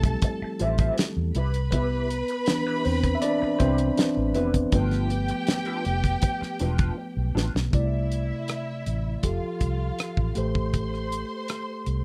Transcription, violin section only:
Already playing: A4 A5
1.35 B4 B5
4.73 G4 G5
7.73 E4 E5
9.24 F4 F5
10.36 C5 C6

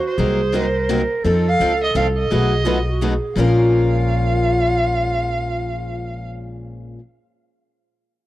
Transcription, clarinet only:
Already playing: F#4
0.18 G#4
0.55 A#4
1.24 A4
2.30 G#4
2.65 F4
2.82 G#4
2.90 F#4
3.02 G#4
3.39 F4

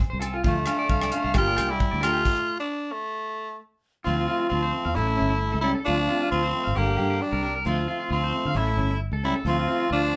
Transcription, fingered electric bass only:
0.13 C2
0.45 D2
0.90 C2
1.24 C2
1.35 G1
1.58 C2
1.93 D2
4.07 D2
4.52 D2
4.85 E2
4.96 A1
5.20 G1
5.54 C#2
5.88 D2
6.32 D2
6.67 G#1
6.77 G1
6.99 G2
7.32 C2
7.66 D2
8.10 D2
8.45 D3
8.55 A1
8.77 G1
9.12 C#2
9.45 D2
9.91 D2

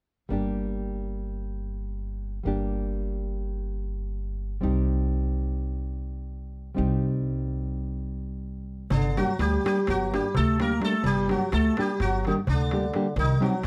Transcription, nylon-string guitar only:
0.29 G3 A#3 D4
0.33 G4
2.43 G3 A#3 D4
2.47 G4
4.61 G3 C4 D#4 G4
6.75 G3 C4 D#4 G4
9.17 G3 A#3 D4 G4
9.64 G3 A#3 D4 G4
10.13 G3 A#3 D4 G4
10.59 G3 A#3 D4 G4
10.80 G3 A#3 D4 G4
11.28 G3 A#3 D4 G4
11.78 G3 A#3 D4 G4
12.26 G3 A#3 D4 G4
12.72 G3 A#3 D4 G4
12.95 G3 A#3 D4 G4
13.40 G3 C4 D#4 G4

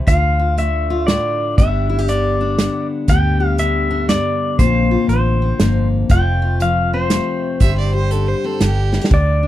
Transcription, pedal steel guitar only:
0.08 F5
0.59 E5
1.07 D5
1.58 E5
2.09 D5
3.09 G5
3.59 E5
4.09 D5
4.59 C5
5.09 C5
6.11 G5
6.62 F5
6.94 C5
9.14 D5

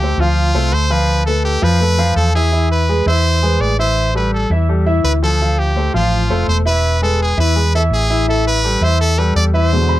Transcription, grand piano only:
0.02 A3 A4 C5
0.20 F3 F4 F5
0.54 A3 A4 C5
0.90 F3 F4 F5
1.27 A3 A4 B4
1.62 F3 F4 F5
1.80 A3 A4 B4
1.98 F3 F4 F5
2.35 E3 E4 E5
2.52 E3 E4 E5
2.89 G#3 G#4 B4
3.07 E3 E4 E5
3.43 G#3 G#4 B4
3.79 E3 E4 E5
4.15 G3 G4 A4
4.51 E3 E4 E5
4.69 G3 G4 A4
4.86 E3 E4 E5
5.23 F3 F4 F5
5.41 F3 F4 F5
5.76 A3 A4 C5
5.94 F3 F4 F5
6.30 A3 A4 C5
6.65 E3 E4 E5
7.02 G#3 G#4 B4
7.37 E3 E4 E5
7.56 G#3 G#4 B4
7.74 E3 E4 E5
8.10 E3 E4 E5
8.27 E3 E4 E5
8.64 G3 G4 A4
8.81 E3 E4 E5
9.18 G3 G4 A4
9.54 E3 E4 E5
9.72 B2 D3 G#3
9.89 B5

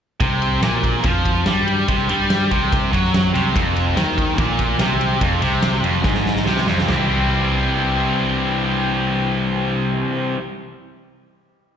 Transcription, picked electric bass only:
0.21 C2
0.62 A#1
1.04 F2
1.47 G2
1.89 C2
2.10 G2
2.51 C2
2.94 F#2
3.33 C2
3.55 F1
3.97 D#2
4.38 A#1
4.78 C2
5.21 F1
5.41 C2
5.82 F1
6.04 G#1
6.47 C2
6.68 F1
6.89 C2

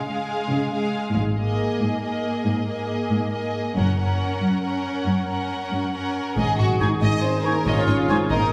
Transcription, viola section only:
0.11 G#3
0.75 G#3
1.38 A#3
2.02 A#3
2.66 A#3
3.32 A#3
3.76 C#4
3.99 C#4
4.63 C#4
5.29 C#4
5.95 C#4
7.66 F4
8.31 D#4

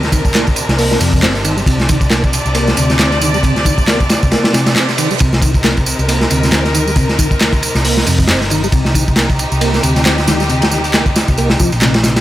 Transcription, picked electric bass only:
Already playing: D2
0.69 C2
1.01 F2
1.23 G1
1.66 C2
2.46 C2
2.77 D2
4.23 C2
5.21 C2
5.99 C2
6.31 D2
7.75 C2
8.07 F2
8.29 G1
8.73 C2
9.52 C2
9.83 D2
11.28 C2
11.60 C2
11.73 A#1

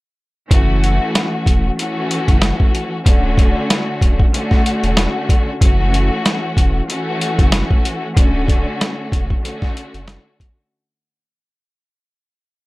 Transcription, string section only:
0.50 E3 A3 C#4 F#4
1.77 E3 A3 C#4 F#4
3.04 D3 A3 C#4 F#4
4.32 D3 A3 C#4 F#4
5.60 E3 A3 C#4 F#4
6.88 E3 A3 C#4 F#4
8.15 D3 A3 C#4 F#4
9.43 D3 A3 C#4 F#4

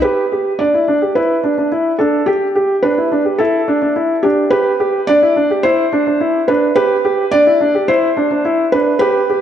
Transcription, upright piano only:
0.04 G4
0.32 G4
0.60 D4
0.74 E4
0.88 D4
1.02 G4
1.16 E4
1.44 D4
1.58 D4
1.72 E4
2.00 D4
2.28 G4
2.56 G4
2.84 D4
2.98 E4
3.12 D4
3.25 G4
3.40 E4
3.68 D4
3.82 D4
3.96 E4
4.24 D4
4.52 G4
4.80 G4
5.08 D4
5.22 E4
5.36 D4
5.51 G4
5.64 E4
5.93 D4
6.07 D4
6.20 E4
6.49 D4
6.76 G4
7.05 G4
7.33 D4
7.47 E4
7.61 D4
7.75 G4
7.89 E4
8.17 D4
8.31 D4
8.45 E4
8.73 D4
9.01 G4
9.30 G4

